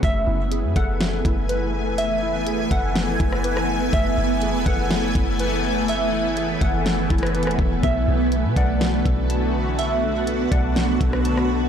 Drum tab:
HH |x-----------x-----x-----x-----x-----x-----------|x-----------x-----x-----x-----x-----x-----------|x-----------x-----x-----x-----x-----x-----------|x-----------x-----x-----x-----x-x-x-x-x-x-------|
SD |------------------------o-----------------------|------------------------o--------r-----r--------|------------------------o-----------------------|------------------------o--------r-----r--------|
BD |o-----------------o-----------o-----------------|------------------o-----------o-----------------|o-----------------o-----------o-----------------|------------------o-----------o-----------o-----|

HH |x-----------x-----x-----x-----x-----x-----------|x-----------x-----x-----x-----x-----x-----------|
SD |------------------------o-----------------------|------------------------o--------r-----r--------|
BD |o-----------------o-----------o-----------------|------------------o-----------o-----------------|